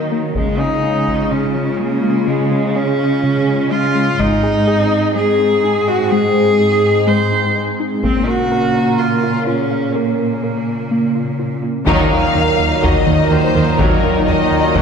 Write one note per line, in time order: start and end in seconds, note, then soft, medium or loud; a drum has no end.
0.00 0.32 D#3 soft
0.00 0.32 D#3 medium
0.00 0.32 F#3 medium
0.00 0.32 A#3 medium
0.00 0.11 D#4 medium
0.00 0.32 A#4 medium
0.12 0.26 A#3 soft
0.35 0.50 C#3 medium
0.35 4.16 C#3 soft
0.35 0.61 G#3 medium
0.35 4.18 G#3 medium
0.35 4.20 C#4 medium
0.35 4.20 F4 medium
0.35 4.19 G#4 medium
0.35 taiko medium
0.59 0.74 C#4 soft
0.59 1.33 D#4 medium
0.84 0.98 C#4 medium
1.07 taiko soft
1.31 1.46 C#3 medium
1.31 1.80 C#4 medium
1.56 1.70 G#3 medium
1.79 1.94 G#3 medium
1.79 2.29 A#3 medium
2.04 2.18 G#3 medium
2.27 2.42 C#3 medium
2.27 2.77 G#3 medium
2.51 2.66 C#4 medium
2.76 3.73 C#4 medium
2.76 2.90 C#4 medium
3.23 3.38 C#3 medium
3.47 3.62 G#3 medium
3.71 3.86 G#3 medium
3.71 4.21 F4 medium
3.95 4.10 G#3 medium
4.19 8.04 G#2 medium
4.19 4.34 G#3 medium
4.19 8.00 G#3 medium
4.19 8.04 C4 medium
4.19 8.03 D#4 medium
4.19 5.14 D#4 medium
4.19 8.00 G#4 medium
4.19 taiko medium
4.43 4.58 G#4 medium
4.67 4.82 G#4 medium
5.15 5.30 G#3 medium
5.15 5.89 G#4 medium
5.39 5.54 D#4 medium
5.64 5.78 D#4 medium
5.87 6.02 D#4 soft
5.87 6.12 F#4 medium
6.11 6.26 G#3 medium
6.11 7.08 G#4 medium
6.36 6.50 G#4 medium
6.60 6.74 G#4 soft
7.07 7.22 G#3 medium
7.07 7.55 C5 medium
7.32 7.46 D#4 medium
7.56 7.70 D#4 medium
7.80 7.94 D#4 medium
8.03 11.63 A#2 soft
8.03 11.88 C#3 medium
8.03 11.86 A#3 medium
8.03 8.18 A#3 medium
8.03 8.28 C4 medium
8.03 11.88 C#4 medium
8.03 11.86 A#4 medium
8.03 taiko medium
8.27 9.00 F#4 medium
8.27 8.42 A#4 soft
8.52 8.66 A#4 medium
8.98 9.14 A#3 medium
8.98 9.46 F4 medium
9.23 9.38 F4 medium
9.47 9.97 C#4 soft
9.47 9.62 F4 soft
9.71 9.86 F4 soft
9.95 11.63 A#3 medium
9.95 10.10 A#3 medium
10.19 10.34 A#4 medium
10.43 10.58 A#4 soft
10.91 11.06 A#3 medium
11.15 11.30 F4 soft
11.39 11.54 F4 soft
11.63 11.78 F4 soft
11.87 12.09 D#2 medium
11.87 12.02 D#2 medium
11.87 14.82 A#2 medium
11.87 12.01 D#3 medium
11.87 14.82 D#3 medium
11.87 12.10 D#3 medium
11.87 12.10 F#3 medium
11.87 14.82 F#3 medium
11.87 14.82 A#3 medium
11.87 14.82 D#4 medium
11.87 12.10 A#4 medium
11.87 14.82 A#4 medium
11.87 taiko medium
12.11 12.25 D#2 medium
12.11 12.19 D#2 soft
12.11 12.19 D#3 soft
12.11 12.20 D#3 soft
12.11 12.26 D#4 medium
12.11 12.82 F5 medium
12.35 12.43 D#2 soft
12.35 12.50 D#2 soft
12.35 12.43 D#3 soft
12.35 12.44 D#3 soft
12.35 12.50 D#4 soft
12.59 12.74 D#2 medium
12.83 12.91 D#2 medium
12.83 12.98 D#2 medium
12.83 12.98 D#3 medium
12.83 12.92 D#3 medium
12.83 13.05 F#3 soft
12.83 13.31 D#5 medium
12.83 taiko medium
13.07 13.15 D#2 soft
13.07 13.21 D#3 medium
13.07 13.15 D#3 soft
13.07 13.16 D#3 soft
13.07 13.22 A#3 medium
13.31 13.39 D#2 soft
13.31 13.46 D#3 soft
13.31 13.39 D#3 soft
13.31 13.40 D#3 soft
13.31 13.46 A#3 soft
13.31 13.79 C5 medium
13.55 13.63 D#2 soft
13.55 13.63 D#3 soft
13.55 13.70 D#3 medium
13.55 13.64 D#3 soft
13.55 13.70 A#3 medium
13.78 13.86 D#2 medium
13.78 13.94 D#2 medium
13.78 13.94 D#3 medium
13.78 13.88 D#3 medium
13.78 14.01 F#3 medium
13.78 14.27 A#4 medium
13.78 taiko medium
14.02 14.10 D#2 soft
14.02 14.18 D#2 soft
14.02 14.11 D#3 soft
14.02 14.12 D#3 soft
14.02 14.18 D#4 medium
14.27 14.35 D#2 soft
14.27 14.42 D#2 medium
14.27 14.35 D#3 soft
14.27 14.36 D#3 soft
14.27 14.42 D#4 soft
14.27 14.82 D#5 medium
14.51 14.66 D#2 medium
14.75 14.82 D#2 medium
14.75 14.82 D#3 medium
14.75 14.82 F#3 medium
14.75 taiko medium